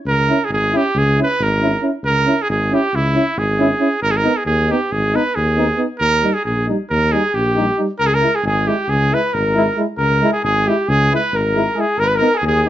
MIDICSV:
0, 0, Header, 1, 6, 480
1, 0, Start_track
1, 0, Tempo, 441176
1, 59, Time_signature, 9, 3, 24, 8
1, 13808, End_track
2, 0, Start_track
2, 0, Title_t, "Flugelhorn"
2, 0, Program_c, 0, 56
2, 7773, Note_on_c, 0, 68, 58
2, 7993, Note_on_c, 0, 67, 59
2, 8010, Note_off_c, 0, 68, 0
2, 8517, Note_off_c, 0, 67, 0
2, 8693, Note_on_c, 0, 70, 89
2, 8800, Note_on_c, 0, 68, 62
2, 8817, Note_off_c, 0, 70, 0
2, 8869, Note_on_c, 0, 70, 88
2, 8885, Note_off_c, 0, 68, 0
2, 9082, Note_on_c, 0, 68, 51
2, 9098, Note_off_c, 0, 70, 0
2, 9174, Note_off_c, 0, 68, 0
2, 9180, Note_on_c, 0, 68, 74
2, 9439, Note_on_c, 0, 67, 62
2, 9455, Note_off_c, 0, 68, 0
2, 9663, Note_on_c, 0, 68, 60
2, 9680, Note_off_c, 0, 67, 0
2, 9937, Note_on_c, 0, 71, 66
2, 9953, Note_off_c, 0, 68, 0
2, 10159, Note_on_c, 0, 70, 77
2, 10175, Note_off_c, 0, 71, 0
2, 10683, Note_off_c, 0, 70, 0
2, 10851, Note_on_c, 0, 70, 89
2, 11197, Note_off_c, 0, 70, 0
2, 11221, Note_on_c, 0, 68, 57
2, 11328, Note_off_c, 0, 68, 0
2, 11339, Note_on_c, 0, 68, 80
2, 11596, Note_on_c, 0, 67, 61
2, 11613, Note_off_c, 0, 68, 0
2, 11833, Note_on_c, 0, 68, 63
2, 11850, Note_off_c, 0, 67, 0
2, 12084, Note_off_c, 0, 68, 0
2, 12091, Note_on_c, 0, 71, 74
2, 12334, Note_on_c, 0, 70, 69
2, 12350, Note_off_c, 0, 71, 0
2, 12792, Note_on_c, 0, 68, 72
2, 12808, Note_off_c, 0, 70, 0
2, 13030, Note_on_c, 0, 70, 92
2, 13046, Note_off_c, 0, 68, 0
2, 13096, Note_on_c, 0, 71, 84
2, 13112, Note_off_c, 0, 70, 0
2, 13214, Note_on_c, 0, 70, 88
2, 13231, Note_off_c, 0, 71, 0
2, 13431, Note_on_c, 0, 68, 61
2, 13447, Note_off_c, 0, 70, 0
2, 13524, Note_off_c, 0, 68, 0
2, 13538, Note_on_c, 0, 68, 89
2, 13804, Note_off_c, 0, 68, 0
2, 13808, End_track
3, 0, Start_track
3, 0, Title_t, "Trumpet"
3, 0, Program_c, 1, 56
3, 85, Note_on_c, 1, 70, 100
3, 480, Note_on_c, 1, 68, 79
3, 496, Note_off_c, 1, 70, 0
3, 570, Note_off_c, 1, 68, 0
3, 574, Note_on_c, 1, 68, 94
3, 835, Note_on_c, 1, 67, 87
3, 851, Note_off_c, 1, 68, 0
3, 1070, Note_on_c, 1, 68, 94
3, 1086, Note_off_c, 1, 67, 0
3, 1308, Note_off_c, 1, 68, 0
3, 1337, Note_on_c, 1, 71, 92
3, 1555, Note_on_c, 1, 70, 83
3, 1571, Note_off_c, 1, 71, 0
3, 2061, Note_off_c, 1, 70, 0
3, 2236, Note_on_c, 1, 70, 105
3, 2634, Note_on_c, 1, 68, 96
3, 2650, Note_off_c, 1, 70, 0
3, 2717, Note_off_c, 1, 68, 0
3, 2723, Note_on_c, 1, 68, 80
3, 2982, Note_on_c, 1, 67, 87
3, 2998, Note_off_c, 1, 68, 0
3, 3212, Note_on_c, 1, 64, 96
3, 3229, Note_off_c, 1, 67, 0
3, 3680, Note_on_c, 1, 68, 80
3, 3697, Note_off_c, 1, 64, 0
3, 4368, Note_off_c, 1, 68, 0
3, 4375, Note_on_c, 1, 70, 101
3, 4471, Note_on_c, 1, 68, 89
3, 4487, Note_off_c, 1, 70, 0
3, 4532, Note_on_c, 1, 70, 94
3, 4548, Note_off_c, 1, 68, 0
3, 4753, Note_on_c, 1, 68, 78
3, 4769, Note_off_c, 1, 70, 0
3, 4848, Note_off_c, 1, 68, 0
3, 4854, Note_on_c, 1, 68, 94
3, 5124, Note_on_c, 1, 67, 78
3, 5141, Note_off_c, 1, 68, 0
3, 5351, Note_on_c, 1, 68, 89
3, 5367, Note_off_c, 1, 67, 0
3, 5607, Note_on_c, 1, 71, 88
3, 5623, Note_off_c, 1, 68, 0
3, 5821, Note_on_c, 1, 68, 84
3, 5837, Note_off_c, 1, 71, 0
3, 6349, Note_off_c, 1, 68, 0
3, 6514, Note_on_c, 1, 70, 106
3, 6889, Note_on_c, 1, 68, 76
3, 6906, Note_off_c, 1, 70, 0
3, 7006, Note_off_c, 1, 68, 0
3, 7014, Note_on_c, 1, 68, 71
3, 7252, Note_off_c, 1, 68, 0
3, 7503, Note_on_c, 1, 70, 88
3, 7745, Note_on_c, 1, 68, 80
3, 7762, Note_off_c, 1, 70, 0
3, 7990, Note_on_c, 1, 67, 74
3, 8006, Note_off_c, 1, 68, 0
3, 8515, Note_off_c, 1, 67, 0
3, 8693, Note_on_c, 1, 70, 102
3, 8777, Note_on_c, 1, 68, 81
3, 8793, Note_off_c, 1, 70, 0
3, 8858, Note_on_c, 1, 70, 91
3, 8874, Note_off_c, 1, 68, 0
3, 9088, Note_on_c, 1, 68, 74
3, 9105, Note_off_c, 1, 70, 0
3, 9187, Note_off_c, 1, 68, 0
3, 9210, Note_on_c, 1, 68, 80
3, 9439, Note_on_c, 1, 67, 73
3, 9455, Note_off_c, 1, 68, 0
3, 9675, Note_on_c, 1, 68, 89
3, 9692, Note_off_c, 1, 67, 0
3, 9943, Note_on_c, 1, 71, 75
3, 9959, Note_off_c, 1, 68, 0
3, 10157, Note_on_c, 1, 70, 82
3, 10174, Note_off_c, 1, 71, 0
3, 10682, Note_off_c, 1, 70, 0
3, 10852, Note_on_c, 1, 70, 92
3, 11198, Note_off_c, 1, 70, 0
3, 11237, Note_on_c, 1, 68, 75
3, 11337, Note_off_c, 1, 68, 0
3, 11364, Note_on_c, 1, 68, 89
3, 11623, Note_on_c, 1, 67, 80
3, 11639, Note_off_c, 1, 68, 0
3, 11848, Note_on_c, 1, 68, 102
3, 11864, Note_off_c, 1, 67, 0
3, 12096, Note_off_c, 1, 68, 0
3, 12130, Note_on_c, 1, 71, 91
3, 12358, Note_on_c, 1, 70, 82
3, 12375, Note_off_c, 1, 71, 0
3, 12845, Note_on_c, 1, 68, 86
3, 12861, Note_off_c, 1, 70, 0
3, 13051, Note_on_c, 1, 70, 106
3, 13067, Note_off_c, 1, 68, 0
3, 13143, Note_on_c, 1, 71, 84
3, 13159, Note_off_c, 1, 70, 0
3, 13238, Note_on_c, 1, 70, 97
3, 13255, Note_off_c, 1, 71, 0
3, 13458, Note_on_c, 1, 68, 92
3, 13474, Note_off_c, 1, 70, 0
3, 13537, Note_off_c, 1, 68, 0
3, 13567, Note_on_c, 1, 68, 94
3, 13808, Note_off_c, 1, 68, 0
3, 13808, End_track
4, 0, Start_track
4, 0, Title_t, "Trombone"
4, 0, Program_c, 2, 57
4, 315, Note_on_c, 2, 64, 56
4, 407, Note_off_c, 2, 64, 0
4, 795, Note_on_c, 2, 64, 56
4, 888, Note_off_c, 2, 64, 0
4, 1283, Note_on_c, 2, 64, 51
4, 1375, Note_off_c, 2, 64, 0
4, 1757, Note_on_c, 2, 64, 59
4, 1848, Note_off_c, 2, 64, 0
4, 1989, Note_on_c, 2, 64, 39
4, 2078, Note_off_c, 2, 64, 0
4, 2471, Note_on_c, 2, 64, 59
4, 2561, Note_off_c, 2, 64, 0
4, 2964, Note_on_c, 2, 64, 63
4, 3053, Note_off_c, 2, 64, 0
4, 3432, Note_on_c, 2, 64, 67
4, 3525, Note_off_c, 2, 64, 0
4, 3912, Note_on_c, 2, 64, 65
4, 4002, Note_off_c, 2, 64, 0
4, 4136, Note_on_c, 2, 64, 52
4, 4226, Note_off_c, 2, 64, 0
4, 4609, Note_on_c, 2, 63, 62
4, 4703, Note_off_c, 2, 63, 0
4, 5098, Note_on_c, 2, 63, 59
4, 5192, Note_off_c, 2, 63, 0
4, 5592, Note_on_c, 2, 63, 60
4, 5684, Note_off_c, 2, 63, 0
4, 6071, Note_on_c, 2, 63, 64
4, 6160, Note_off_c, 2, 63, 0
4, 6291, Note_on_c, 2, 63, 46
4, 6382, Note_off_c, 2, 63, 0
4, 6774, Note_on_c, 2, 63, 55
4, 6867, Note_off_c, 2, 63, 0
4, 7263, Note_on_c, 2, 63, 50
4, 7356, Note_off_c, 2, 63, 0
4, 7759, Note_on_c, 2, 63, 48
4, 7850, Note_off_c, 2, 63, 0
4, 8222, Note_on_c, 2, 63, 56
4, 8314, Note_off_c, 2, 63, 0
4, 8459, Note_on_c, 2, 63, 39
4, 8549, Note_off_c, 2, 63, 0
4, 8941, Note_on_c, 2, 64, 49
4, 9033, Note_off_c, 2, 64, 0
4, 9433, Note_on_c, 2, 64, 46
4, 9525, Note_off_c, 2, 64, 0
4, 9922, Note_on_c, 2, 64, 57
4, 10014, Note_off_c, 2, 64, 0
4, 10398, Note_on_c, 2, 64, 74
4, 10488, Note_off_c, 2, 64, 0
4, 10636, Note_on_c, 2, 64, 55
4, 10724, Note_off_c, 2, 64, 0
4, 11134, Note_on_c, 2, 64, 61
4, 11221, Note_off_c, 2, 64, 0
4, 11619, Note_on_c, 2, 64, 63
4, 11706, Note_off_c, 2, 64, 0
4, 12108, Note_on_c, 2, 64, 51
4, 12195, Note_off_c, 2, 64, 0
4, 12580, Note_on_c, 2, 64, 59
4, 12667, Note_off_c, 2, 64, 0
4, 12811, Note_on_c, 2, 64, 47
4, 12896, Note_off_c, 2, 64, 0
4, 13284, Note_on_c, 2, 63, 68
4, 13373, Note_off_c, 2, 63, 0
4, 13764, Note_on_c, 2, 63, 53
4, 13808, Note_off_c, 2, 63, 0
4, 13808, End_track
5, 0, Start_track
5, 0, Title_t, "Euphonium"
5, 0, Program_c, 3, 58
5, 326, Note_on_c, 3, 61, 57
5, 416, Note_off_c, 3, 61, 0
5, 815, Note_on_c, 3, 61, 55
5, 904, Note_off_c, 3, 61, 0
5, 1294, Note_on_c, 3, 61, 51
5, 1384, Note_off_c, 3, 61, 0
5, 1756, Note_on_c, 3, 61, 54
5, 1847, Note_off_c, 3, 61, 0
5, 1977, Note_on_c, 3, 61, 53
5, 2068, Note_off_c, 3, 61, 0
5, 2454, Note_on_c, 3, 61, 69
5, 2548, Note_off_c, 3, 61, 0
5, 2951, Note_on_c, 3, 61, 69
5, 3043, Note_off_c, 3, 61, 0
5, 3428, Note_on_c, 3, 61, 57
5, 3522, Note_off_c, 3, 61, 0
5, 3911, Note_on_c, 3, 61, 70
5, 4001, Note_off_c, 3, 61, 0
5, 4133, Note_on_c, 3, 61, 64
5, 4224, Note_off_c, 3, 61, 0
5, 4626, Note_on_c, 3, 59, 64
5, 4717, Note_off_c, 3, 59, 0
5, 5117, Note_on_c, 3, 59, 60
5, 5207, Note_off_c, 3, 59, 0
5, 5597, Note_on_c, 3, 59, 57
5, 5688, Note_off_c, 3, 59, 0
5, 6059, Note_on_c, 3, 59, 53
5, 6151, Note_off_c, 3, 59, 0
5, 6280, Note_on_c, 3, 59, 57
5, 6373, Note_off_c, 3, 59, 0
5, 6774, Note_on_c, 3, 55, 59
5, 6867, Note_off_c, 3, 55, 0
5, 7274, Note_on_c, 3, 55, 60
5, 7364, Note_off_c, 3, 55, 0
5, 7758, Note_on_c, 3, 55, 50
5, 7849, Note_off_c, 3, 55, 0
5, 8241, Note_on_c, 3, 55, 53
5, 8329, Note_off_c, 3, 55, 0
5, 8475, Note_on_c, 3, 55, 52
5, 8562, Note_off_c, 3, 55, 0
5, 8936, Note_on_c, 3, 56, 48
5, 9029, Note_off_c, 3, 56, 0
5, 9426, Note_on_c, 3, 56, 67
5, 9519, Note_off_c, 3, 56, 0
5, 9921, Note_on_c, 3, 56, 48
5, 10013, Note_off_c, 3, 56, 0
5, 10407, Note_on_c, 3, 56, 56
5, 10495, Note_off_c, 3, 56, 0
5, 10629, Note_on_c, 3, 56, 65
5, 10718, Note_off_c, 3, 56, 0
5, 11118, Note_on_c, 3, 56, 73
5, 11208, Note_off_c, 3, 56, 0
5, 11605, Note_on_c, 3, 56, 68
5, 11695, Note_off_c, 3, 56, 0
5, 12091, Note_on_c, 3, 56, 60
5, 12182, Note_off_c, 3, 56, 0
5, 12552, Note_on_c, 3, 56, 68
5, 12644, Note_off_c, 3, 56, 0
5, 12792, Note_on_c, 3, 56, 59
5, 12882, Note_off_c, 3, 56, 0
5, 13279, Note_on_c, 3, 59, 66
5, 13369, Note_off_c, 3, 59, 0
5, 13774, Note_on_c, 3, 59, 55
5, 13808, Note_off_c, 3, 59, 0
5, 13808, End_track
6, 0, Start_track
6, 0, Title_t, "Tuba"
6, 0, Program_c, 4, 58
6, 55, Note_on_c, 4, 37, 80
6, 323, Note_off_c, 4, 37, 0
6, 539, Note_on_c, 4, 32, 84
6, 808, Note_off_c, 4, 32, 0
6, 1030, Note_on_c, 4, 37, 91
6, 1297, Note_off_c, 4, 37, 0
6, 1519, Note_on_c, 4, 32, 102
6, 1900, Note_off_c, 4, 32, 0
6, 2208, Note_on_c, 4, 37, 79
6, 2476, Note_off_c, 4, 37, 0
6, 2703, Note_on_c, 4, 32, 94
6, 2968, Note_off_c, 4, 32, 0
6, 3194, Note_on_c, 4, 37, 83
6, 3458, Note_off_c, 4, 37, 0
6, 3666, Note_on_c, 4, 32, 93
6, 4048, Note_off_c, 4, 32, 0
6, 4373, Note_on_c, 4, 32, 93
6, 4637, Note_off_c, 4, 32, 0
6, 4854, Note_on_c, 4, 39, 97
6, 5121, Note_off_c, 4, 39, 0
6, 5349, Note_on_c, 4, 32, 96
6, 5614, Note_off_c, 4, 32, 0
6, 5837, Note_on_c, 4, 39, 92
6, 6216, Note_off_c, 4, 39, 0
6, 6529, Note_on_c, 4, 39, 88
6, 6795, Note_off_c, 4, 39, 0
6, 7020, Note_on_c, 4, 34, 80
6, 7285, Note_off_c, 4, 34, 0
6, 7514, Note_on_c, 4, 39, 102
6, 7778, Note_off_c, 4, 39, 0
6, 7985, Note_on_c, 4, 34, 86
6, 8369, Note_off_c, 4, 34, 0
6, 8698, Note_on_c, 4, 37, 75
6, 8963, Note_off_c, 4, 37, 0
6, 9172, Note_on_c, 4, 32, 100
6, 9441, Note_off_c, 4, 32, 0
6, 9659, Note_on_c, 4, 37, 92
6, 9929, Note_off_c, 4, 37, 0
6, 10157, Note_on_c, 4, 32, 95
6, 10539, Note_off_c, 4, 32, 0
6, 10852, Note_on_c, 4, 37, 83
6, 11120, Note_off_c, 4, 37, 0
6, 11350, Note_on_c, 4, 32, 98
6, 11615, Note_off_c, 4, 32, 0
6, 11840, Note_on_c, 4, 37, 102
6, 12105, Note_off_c, 4, 37, 0
6, 12321, Note_on_c, 4, 32, 94
6, 12703, Note_off_c, 4, 32, 0
6, 13030, Note_on_c, 4, 32, 82
6, 13294, Note_off_c, 4, 32, 0
6, 13510, Note_on_c, 4, 39, 96
6, 13776, Note_off_c, 4, 39, 0
6, 13808, End_track
0, 0, End_of_file